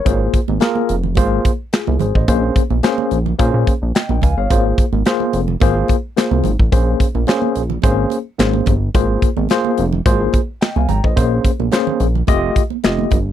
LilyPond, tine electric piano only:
\new Staff \with { instrumentName = "Tine electric piano" } { \time 4/4 \key aes \major \tempo 4 = 108 << { <bes' des''>16 r2 r8. <f' aes'>8 <aes' c''>16 <c'' ees''>16~ | <c'' ees''>16 r2 r8. <ees'' g''>8 <f'' aes''>16 <des'' f''>16~ | <des'' f''>16 r2. r8. | r1 |
r2. <ees'' g''>16 <f'' aes''>16 <g'' bes''>16 <c'' ees''>16~ | <c'' ees''>16 r2. r8. | } \\ { <bes f' aes' c''>8 r8 <bes f' aes' bes'>8 r8 <bes f' aes' c''>8 r4. | <bes des' aes' c''>8 r8 <bes des' aes' c''>8 r8 <bes des' aes' c''>8 r4. | <bes f' aes' c''>8 r8 <bes f' aes' c''>8 r8 <bes f' aes' c''>8 r8 <bes f' aes' c''>8 r8 | <bes des' aes' c''>8 r8 <bes des' aes' c''>8 r8 <bes des' aes' c''>8 r8 <bes des' aes' c''>8 r8 |
<bes f' aes' c''>8 r8 <bes f' aes' c''>8 r8 <bes f' aes' c''>8 r4. | <bes des' aes' c''>8 r8 <bes des' aes' c''>8 r8 <a f' g' ees''>8 r8 <a f' g' ees''>8 r8 | } >> }